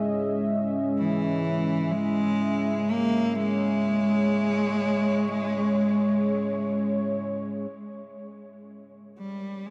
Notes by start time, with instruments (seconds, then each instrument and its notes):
Already playing: analog synth pad G#3 C#4 G#4 D#5 E5
0.98 cello E3
1.92 cello G#3
2.21 analog synth pad C#5
2.91 cello A#3
3.36 cello G#3
8.37 analog synth pad A#4
8.51 analog synth pad B4
9.14 analog synth pad D#4
9.19 cello G3
9.66 cello G#3